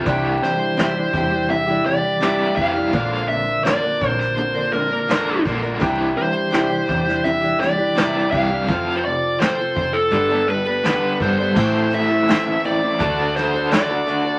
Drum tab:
CC |----------------|----------------|----------------|----------------|
HH |x---x---x---x---|x---x---x---x---|x---x---x---x---|x---x---x---x---|
SD |--o-o-------o---|----o--o----o---|----o--o--o-o---|----o-------o---|
BD |o-----o-------o-|o-----o-------o-|o-----o-------o-|o-----o-------o-|

CC |x---------------|
HH |--x-x-x-x-x-x-x-|
SD |----o-----o-o---|
BD |o-------o-------|